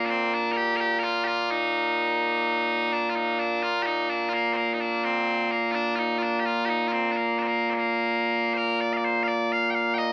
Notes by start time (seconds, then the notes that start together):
Already playing: A#2 A#3
0.05 D4
0.10 C4
0.34 D4
0.52 A#4
0.57 G4
0.77 G4 A#4
0.99 A#4
1.03 F4
1.24 F4 G4
1.51 D#4
2.93 D4
3.10 F4
3.15 D#4
3.39 D4
3.63 F4
3.82 D#4 G4
4.09 D4
4.29 F4
4.33 A#3
4.53 A#3 C4
4.74 D#4
4.80 D4
5.04 C4
5.51 A#3
5.71 D4 F4
5.96 D#4 F4
6.18 F4
6.23 D4
6.40 G4
6.45 F4
6.65 D#4 G4
6.88 F4
6.92 C4
7.11 D4
7.16 A#3
7.38 C4 D4
7.47 A#3
7.70 C4
7.74 G#3
7.79 A#3
8.54 A#4 C5
8.81 D5
8.93 D5 F5
9.05 C5
9.23 F5
9.28 D5
9.52 F5
9.70 G5
9.75 F5
9.94 G5
9.98 D#5